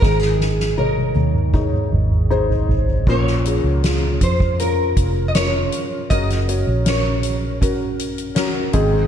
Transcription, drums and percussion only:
0.02 kick medium
0.02 snare soft
0.22 snare soft
0.40 snare soft
0.60 snare soft
0.78 high tom medium
0.98 high tom soft
1.16 high tom medium
1.35 mid tom medium
1.54 kick medium
1.54 mid tom medium
1.73 mid tom medium
1.91 mid tom medium
2.11 mid tom medium
2.30 mid tom medium
2.50 floor tom medium
2.69 floor tom medium
2.87 floor tom medium
3.07 kick medium
3.07 crash medium
3.27 snare soft
3.45 closed hi-hat medium
3.84 snare medium
3.84 closed hi-hat medium
4.21 kick medium
4.21 closed hi-hat medium
4.40 kick medium
4.59 closed hi-hat medium
4.97 kick medium
4.97 closed hi-hat medium
5.35 snare medium
5.35 closed hi-hat medium
5.72 closed hi-hat medium
6.11 kick medium
6.11 closed hi-hat medium
6.30 snare soft
6.30 closed hi-hat soft
6.49 closed hi-hat medium
6.86 snare loud
6.86 closed hi-hat medium
7.23 closed hi-hat medium
7.62 kick medium
7.62 closed hi-hat medium
8.00 closed hi-hat medium
8.18 closed hi-hat soft
8.36 snare medium
8.36 closed hi-hat medium
8.73 kick medium
8.73 closed hi-hat medium

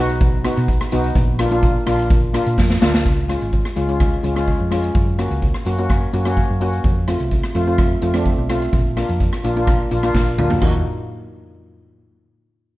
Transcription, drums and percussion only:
0.10 closed hi-hat medium
0.21 kick loud
0.21 closed hi-hat medium
0.45 cross-stick medium
0.45 closed hi-hat medium
0.57 closed hi-hat medium
0.68 kick medium
0.68 closed hi-hat medium
0.81 cross-stick medium
0.92 closed hi-hat loud
1.04 closed hi-hat medium
1.15 kick loud
1.15 closed hi-hat medium
1.39 cross-stick medium
1.39 closed hi-hat loud
1.51 closed hi-hat medium
1.63 kick loud
1.63 closed hi-hat medium
1.87 cross-stick medium
1.87 closed hi-hat medium
1.99 closed hi-hat medium
2.10 kick loud
2.10 closed hi-hat medium
2.34 cross-stick medium
2.34 closed hi-hat medium
2.46 closed hi-hat medium
2.58 kick medium
2.58 snare medium
2.70 snare medium
2.82 snare loud
2.94 snare loud
3.06 kick loud
3.06 closed hi-hat medium
3.30 cross-stick medium
3.30 closed hi-hat medium
3.41 closed hi-hat medium
3.53 kick medium
3.53 closed hi-hat medium
3.65 cross-stick medium
3.76 closed hi-hat medium
3.89 closed hi-hat medium
4.00 kick loud
4.00 cross-stick medium
4.00 closed hi-hat medium
4.24 closed hi-hat medium
4.36 cross-stick medium
4.36 closed hi-hat medium
4.48 kick medium
4.48 closed hi-hat medium
4.72 cross-stick medium
4.72 closed hi-hat medium
4.84 closed hi-hat medium
4.95 kick loud
4.95 closed hi-hat medium
5.19 cross-stick medium
5.19 closed hi-hat medium
5.31 closed hi-hat medium
5.42 kick medium
5.42 closed hi-hat medium
5.54 cross-stick medium
5.66 closed hi-hat medium
5.78 closed hi-hat medium
5.90 kick loud
5.90 cross-stick medium
5.90 closed hi-hat medium
6.14 closed hi-hat medium
6.25 cross-stick medium
6.25 closed hi-hat medium
6.37 kick medium
6.37 closed hi-hat medium
6.61 closed hi-hat medium
6.73 closed hi-hat medium
6.84 kick loud
6.84 closed hi-hat medium
7.08 cross-stick medium
7.08 closed hi-hat medium
7.20 closed hi-hat medium
7.31 kick medium
7.31 closed hi-hat medium
7.44 cross-stick medium
7.55 closed hi-hat medium
7.67 closed hi-hat medium
7.78 kick loud
7.78 cross-stick medium
7.78 closed hi-hat medium
8.02 closed hi-hat medium
8.14 cross-stick medium
8.14 closed hi-hat medium
8.25 kick medium
8.25 closed hi-hat medium
8.49 cross-stick medium
8.49 closed hi-hat medium
8.62 closed hi-hat medium
8.73 kick loud
8.73 closed hi-hat medium
8.97 cross-stick medium
8.97 closed hi-hat medium
9.09 closed hi-hat medium
9.20 kick medium
9.20 closed hi-hat medium
9.33 cross-stick medium
9.44 closed hi-hat medium
9.56 closed hi-hat medium
9.67 kick loud
9.67 cross-stick medium
9.67 closed hi-hat medium
9.91 closed hi-hat medium
10.03 cross-stick medium
10.03 closed hi-hat medium
10.15 kick medium
10.15 snare medium
10.38 mid tom medium
10.50 floor tom medium
10.61 kick loud
10.61 crash medium

